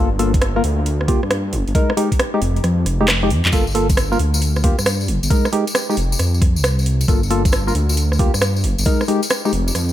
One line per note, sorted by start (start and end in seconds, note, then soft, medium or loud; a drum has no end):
0.00 0.61 G1 medium
0.19 0.32 A#3 medium
0.19 0.32 F4 medium
0.19 0.32 A4 medium
0.19 open hi-hat loud
0.34 kick loud
0.34 closed hi-hat medium
0.42 cross-stick loud
0.42 closed hi-hat medium
0.56 0.63 A#3 medium
0.56 0.63 F4 medium
0.56 0.63 A#4 medium
0.64 1.17 D2 medium
0.64 open hi-hat medium
0.86 closed hi-hat medium
1.01 cross-stick medium
1.08 1.21 A#3 medium
1.08 1.21 F4 medium
1.08 1.21 G4 medium
1.08 kick loud
1.08 open hi-hat loud
1.23 1.54 G2 medium
1.23 cross-stick soft
1.31 cross-stick loud
1.31 closed hi-hat medium
1.53 1.64 F1 loud
1.53 open hi-hat medium
1.67 1.73 G1 medium
1.67 closed hi-hat soft
1.75 1.92 G#3 medium
1.75 1.92 D#4 medium
1.75 1.92 A#4 medium
1.75 kick loud
1.75 closed hi-hat medium
1.90 cross-stick medium
1.97 2.09 G#3 medium
1.97 2.09 D#4 medium
1.97 2.09 G4 medium
1.97 open hi-hat loud
2.12 kick medium
2.12 closed hi-hat medium
2.19 cross-stick loud
2.19 closed hi-hat medium
2.34 2.40 G#3 medium
2.34 2.40 D#4 medium
2.34 2.40 G4 medium
2.41 2.60 F1 medium
2.41 open hi-hat medium
2.56 closed hi-hat soft
2.64 2.85 F2 loud
2.64 cross-stick medium
2.64 closed hi-hat medium
2.86 3.32 F1 loud
2.86 cross-stick soft
2.86 open hi-hat loud
3.01 3.07 G#3 medium
3.01 3.07 D#4 medium
3.01 3.07 G4 loud
3.08 cross-stick loud
3.08 clap loud
3.08 closed hi-hat medium
3.23 3.29 G#3 medium
3.23 3.29 D#4 medium
3.23 3.29 G4 medium
3.30 3.41 F2 medium
3.30 open hi-hat medium
3.45 3.51 F2 loud
3.45 clap medium
3.45 closed hi-hat soft
3.52 4.16 G1 medium
3.52 3.65 A#3 medium
3.52 3.65 F4 medium
3.52 3.65 A4 medium
3.52 kick loud
3.52 closed hi-hat medium
3.52 tambourine medium
3.67 tambourine soft
3.75 3.87 A#3 medium
3.75 3.87 F4 medium
3.75 3.87 A4 medium
3.75 open hi-hat loud
3.89 kick loud
3.89 closed hi-hat medium
3.89 tambourine medium
3.97 cross-stick loud
3.97 closed hi-hat medium
3.97 tambourine medium
4.12 4.18 A#3 medium
4.12 4.18 F4 medium
4.12 4.18 A#4 medium
4.12 tambourine soft
4.19 4.72 D2 medium
4.19 open hi-hat loud
4.34 tambourine medium
4.42 closed hi-hat medium
4.42 tambourine medium
4.56 cross-stick medium
4.56 tambourine soft
4.64 4.76 A#3 medium
4.64 4.76 F4 medium
4.64 4.76 G4 medium
4.64 kick loud
4.64 open hi-hat loud
4.79 5.10 G2 medium
4.79 cross-stick medium
4.79 tambourine medium
4.86 cross-stick loud
4.86 closed hi-hat medium
4.86 tambourine medium
5.01 tambourine soft
5.08 5.19 F1 loud
5.08 open hi-hat medium
5.23 5.29 G1 medium
5.23 closed hi-hat soft
5.23 tambourine medium
5.30 5.48 G#3 medium
5.30 5.48 D#4 medium
5.30 5.48 A#4 medium
5.30 kick loud
5.30 closed hi-hat medium
5.30 tambourine medium
5.45 cross-stick medium
5.45 tambourine soft
5.53 5.65 G#3 medium
5.53 5.65 D#4 medium
5.53 5.65 G4 medium
5.53 open hi-hat loud
5.67 closed hi-hat medium
5.67 tambourine medium
5.75 cross-stick loud
5.75 closed hi-hat medium
5.75 tambourine medium
5.90 5.96 G#3 medium
5.90 5.96 D#4 medium
5.90 5.96 G4 medium
5.90 tambourine soft
5.97 6.16 F1 medium
5.97 open hi-hat medium
6.12 tambourine medium
6.19 6.58 F2 medium
6.19 cross-stick medium
6.19 closed hi-hat medium
6.19 tambourine medium
6.34 tambourine soft
6.42 kick loud
6.42 cross-stick soft
6.42 open hi-hat loud
6.56 7.05 C2 medium
6.56 tambourine medium
6.64 cross-stick loud
6.64 closed hi-hat medium
6.64 tambourine medium
6.79 tambourine soft
6.86 open hi-hat medium
7.01 closed hi-hat soft
7.01 tambourine medium
7.08 7.72 G1 medium
7.08 7.21 A#3 medium
7.08 7.21 F4 medium
7.08 7.21 A4 medium
7.08 kick loud
7.08 closed hi-hat medium
7.08 tambourine medium
7.23 tambourine soft
7.30 7.43 A#3 medium
7.30 7.43 F4 medium
7.30 7.43 A4 medium
7.30 open hi-hat loud
7.45 kick loud
7.45 closed hi-hat medium
7.45 tambourine medium
7.52 cross-stick loud
7.52 closed hi-hat medium
7.52 tambourine medium
7.67 7.74 A#3 medium
7.67 7.74 F4 medium
7.67 7.74 A#4 medium
7.67 tambourine soft
7.75 8.28 D2 loud
7.75 open hi-hat medium
7.89 tambourine medium
7.97 closed hi-hat medium
7.97 tambourine medium
8.12 cross-stick medium
8.12 tambourine soft
8.19 8.32 A#3 medium
8.19 8.32 F4 medium
8.19 8.32 G4 medium
8.19 kick loud
8.19 open hi-hat loud
8.34 8.65 G2 medium
8.34 cross-stick soft
8.34 tambourine medium
8.42 cross-stick loud
8.42 closed hi-hat medium
8.42 tambourine medium
8.56 tambourine soft
8.64 8.75 F1 loud
8.64 open hi-hat medium
8.78 8.84 G1 medium
8.78 closed hi-hat soft
8.78 tambourine medium
8.85 9.03 G#3 medium
8.85 9.03 D#4 medium
8.85 9.03 A#4 medium
8.85 kick loud
8.85 closed hi-hat medium
8.85 tambourine medium
9.01 cross-stick medium
9.01 tambourine soft
9.08 9.21 G#3 medium
9.08 9.21 D#4 medium
9.08 9.21 G4 medium
9.08 open hi-hat loud
9.22 closed hi-hat medium
9.22 tambourine medium
9.30 cross-stick loud
9.30 closed hi-hat medium
9.30 tambourine medium
9.45 9.52 G#3 medium
9.45 9.52 D#4 medium
9.45 9.52 G4 medium
9.45 tambourine soft
9.53 9.71 F1 loud
9.53 open hi-hat medium
9.68 tambourine medium
9.75 9.93 F2 medium
9.75 cross-stick medium
9.75 closed hi-hat medium
9.75 tambourine medium
9.89 tambourine soft